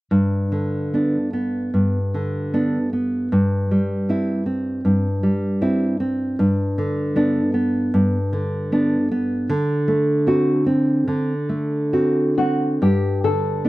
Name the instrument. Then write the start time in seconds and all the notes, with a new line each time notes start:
nylon-string guitar
0.11 G2
0.52 D3
0.94 B3 D4
1.33 B3
1.74 G2
2.14 D3
2.54 B3 D4
2.93 B3
3.32 G2
3.71 G3
4.09 C4 E4
4.46 C4
4.85 G2
5.23 G3
5.62 C4 E4
6.00 C4
6.39 G2
6.78 D3
7.16 B3 D4
7.54 B3
7.94 G2
8.33 D3
8.72 B3 D4
9.11 B3
9.49 D3
9.88 A3
10.27 C4 F#4
10.66 C4
11.08 D3
11.49 A3
11.93 C4 F#4
12.38 C4 F#4
12.82 G2 G4
13.24 D3 A4
13.65 B3 D4